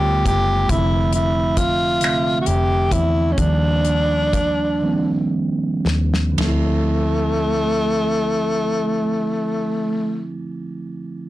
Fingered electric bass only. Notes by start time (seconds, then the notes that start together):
Already playing: D2
0.26 F#1
0.70 F1
2.48 F1
2.92 E2
3.39 D#2
5.34 F2
5.86 D#2
6.39 D2